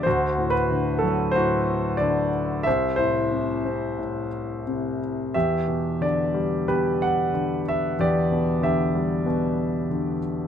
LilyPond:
<<
  \new Staff \with { instrumentName = "Grand piano" } { \time 4/4 \key e \minor \tempo 4 = 92 << { c''8. b'8. a'8 c''4 d''4 | e''8 c''2 r4. | e''4 d''4 b'8 fis''4 e''8 | d''4 e''2~ e''8 r8 | } \\ { fis'2 fis'2 | c''8 e'2 r4. | g'2 g'2 | g'4 g'2~ g'8 r8 | } >> }
  \new Staff \with { instrumentName = "Grand piano" } { \clef bass \time 4/4 \key e \minor d,8 a,8 d8 fis8 a,4 d4 | c,8 a,8 c8 c'8 a,4 c4 | e,8 b,8 d8 g8 b,4 d4 | e,8 b,8 d8 g8 b,4 d4 | }
>>